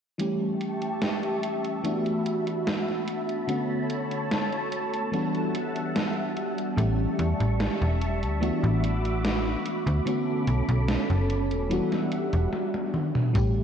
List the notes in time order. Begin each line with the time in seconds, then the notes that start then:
0.18 E3 G3 A3 C#4 G4 E5 A5 C#6, closed hi-hat
0.61 closed hi-hat
0.82 closed hi-hat
1.02 snare, closed hi-hat
1.23 closed hi-hat
1.43 closed hi-hat
1.64 closed hi-hat
1.83 E3 A3 B3 D4 F#4 A5 B5, closed hi-hat
2.06 closed hi-hat
2.26 closed hi-hat
2.47 closed hi-hat
2.67 snare, closed hi-hat
2.88 snare
3.08 closed hi-hat
3.29 closed hi-hat
3.47 D3 A3 B3 C#4 F#4 A4 C#5, closed hi-hat
3.90 closed hi-hat
4.11 closed hi-hat
4.31 snare, closed hi-hat
4.52 closed hi-hat
4.72 closed hi-hat
4.93 closed hi-hat
5.11 E3 G3 B3 D4 F#4 E5 F#5, closed hi-hat
5.35 closed hi-hat
5.55 closed hi-hat
5.76 closed hi-hat
5.96 snare, closed hi-hat
6.37 closed hi-hat
6.58 closed hi-hat
6.76 A1 E3 G3 A3 C#4 G4 E5 A5 C#6, closed hi-hat
7.19 E2, closed hi-hat
7.40 A1, closed hi-hat
7.60 snare, closed hi-hat
7.81 E1, closed hi-hat
8.01 closed hi-hat
8.22 D2, closed hi-hat
8.40 E3 A3 B3 D4 F#4 B5 D6, closed hi-hat
8.63 A1, closed hi-hat
8.84 closed hi-hat
9.05 closed hi-hat
9.25 snare, closed hi-hat
9.46 snare
9.66 closed hi-hat
9.86 D2, closed hi-hat
10.05 D3 A3 B3 C#4 F#4 A4 B5 D6, closed hi-hat
10.48 B1, closed hi-hat
10.69 B1, closed hi-hat
10.88 snare, closed hi-hat
11.10 F#1, closed hi-hat
11.30 closed hi-hat
11.51 E1, closed hi-hat
11.69 E3 G3 B3 D4 F#4 E5 F#5, closed hi-hat
11.92 snare, closed hi-hat
12.12 closed hi-hat
12.33 E1, closed hi-hat
12.53 high tom
12.74 high tom
12.94 mid tom
13.15 mid tom
13.34 A1 E3 G3 A3 C#4 G4 E5 A5 C#6, kick, closed hi-hat, tambourine